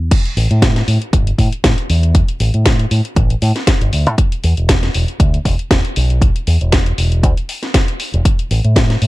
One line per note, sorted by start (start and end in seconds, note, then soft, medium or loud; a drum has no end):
0.11 kick loud
0.11 closed hi-hat loud
0.11 crash loud
0.25 closed hi-hat soft
0.37 0.46 A1 loud
0.37 open hi-hat loud
0.51 0.81 A2 medium
0.51 closed hi-hat soft
0.62 kick loud
0.62 snare loud
0.62 closed hi-hat loud
0.76 snare soft
0.76 closed hi-hat soft
0.88 0.97 A2 medium
0.88 open hi-hat loud
1.02 closed hi-hat soft
1.13 1.30 G1 loud
1.13 kick loud
1.13 closed hi-hat medium
1.27 closed hi-hat soft
1.38 1.47 A2 loud
1.38 kick medium
1.38 open hi-hat loud
1.52 closed hi-hat soft
1.64 1.73 A2 medium
1.64 kick loud
1.64 snare loud
1.64 closed hi-hat medium
1.78 closed hi-hat soft
1.90 2.21 E2 medium
1.90 open hi-hat loud
2.03 closed hi-hat soft
2.15 kick loud
2.15 closed hi-hat medium
2.28 closed hi-hat soft
2.40 2.49 A1 medium
2.40 open hi-hat loud
2.54 2.84 A2 medium
2.54 closed hi-hat soft
2.65 kick loud
2.65 snare loud
2.65 closed hi-hat loud
2.79 closed hi-hat soft
2.91 3.00 A2 medium
2.91 open hi-hat loud
3.05 closed hi-hat soft
3.16 3.34 A1 loud
3.16 kick loud
3.16 closed hi-hat medium
3.30 closed hi-hat soft
3.42 3.51 A2 loud
3.42 open hi-hat loud
3.56 snare soft
3.56 closed hi-hat soft
3.67 kick loud
3.67 snare loud
3.67 closed hi-hat loud
3.81 3.89 G1 medium
3.81 closed hi-hat soft
3.93 4.07 D2 medium
3.93 open hi-hat loud
4.07 4.14 A2 loud
4.07 closed hi-hat soft
4.18 kick loud
4.18 closed hi-hat medium
4.32 closed hi-hat soft
4.44 4.53 E2 loud
4.44 open hi-hat loud
4.57 4.88 E1 medium
4.57 closed hi-hat soft
4.69 kick loud
4.69 snare loud
4.69 closed hi-hat medium
4.83 snare soft
4.83 closed hi-hat soft
4.94 5.04 E1 medium
4.94 open hi-hat loud
5.08 closed hi-hat soft
5.20 5.37 D2 medium
5.20 kick loud
5.20 closed hi-hat medium
5.34 closed hi-hat soft
5.45 5.54 E1 loud
5.45 kick medium
5.45 open hi-hat loud
5.59 closed hi-hat soft
5.71 5.80 E1 loud
5.71 kick loud
5.71 snare loud
5.71 closed hi-hat medium
5.85 closed hi-hat soft
5.96 6.28 B1 medium
5.96 open hi-hat loud
6.10 closed hi-hat soft
6.22 kick loud
6.22 closed hi-hat medium
6.36 closed hi-hat soft
6.47 6.56 E2 loud
6.47 open hi-hat loud
6.61 6.91 E1 medium
6.61 closed hi-hat soft
6.72 kick loud
6.72 snare loud
6.72 closed hi-hat medium
6.86 closed hi-hat soft
6.98 7.23 E1 medium
6.98 open hi-hat loud
7.12 closed hi-hat soft
7.23 7.32 D2 loud
7.23 kick loud
7.23 closed hi-hat medium
7.37 closed hi-hat soft
7.49 open hi-hat loud
7.63 snare soft
7.63 closed hi-hat soft
7.74 kick loud
7.74 snare loud
7.74 closed hi-hat medium
7.88 closed hi-hat soft
8.00 open hi-hat loud
8.14 8.21 E1 medium
8.14 closed hi-hat soft
8.25 kick loud
8.25 closed hi-hat medium
8.39 closed hi-hat soft
8.51 8.59 A1 loud
8.51 open hi-hat loud
8.64 8.95 A2 medium
8.64 closed hi-hat soft
8.76 kick loud
8.76 snare loud
8.76 closed hi-hat medium
8.90 snare soft
8.90 closed hi-hat soft
9.02 9.07 A2 medium
9.02 open hi-hat loud